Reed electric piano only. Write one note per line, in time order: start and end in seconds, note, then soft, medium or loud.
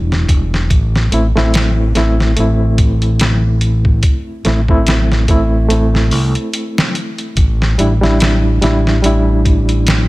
0.00 0.68 G3 medium
0.00 0.68 D4 medium
0.00 0.69 E4 medium
1.12 1.26 A3 medium
1.12 1.26 C4 medium
1.12 1.26 E4 medium
1.36 1.91 A3 medium
1.36 1.92 C4 medium
1.36 1.92 E4 medium
1.95 2.33 A3 medium
1.95 2.33 C4 medium
1.95 2.33 E4 medium
2.36 4.41 A3 medium
2.36 4.42 C4 medium
2.36 4.43 E4 medium
4.45 4.59 A3 medium
4.45 4.59 C4 medium
4.45 4.60 E4 medium
4.69 5.24 A3 medium
4.69 5.25 C4 medium
4.69 5.25 E4 medium
5.29 5.66 A3 medium
5.29 5.66 C4 medium
5.29 5.67 E4 medium
5.68 7.34 A3 medium
5.68 7.35 C4 medium
5.68 7.36 E4 medium
7.78 7.92 G3 medium
7.78 7.93 D4 medium
7.78 7.93 E4 medium
8.01 8.57 G3 medium
8.01 8.58 D4 medium
8.01 8.58 E4 loud
8.62 8.99 G3 medium
8.62 9.00 D4 medium
8.62 9.00 E4 medium
9.02 10.08 G3 medium
9.02 10.08 D4 medium
9.02 10.08 E4 medium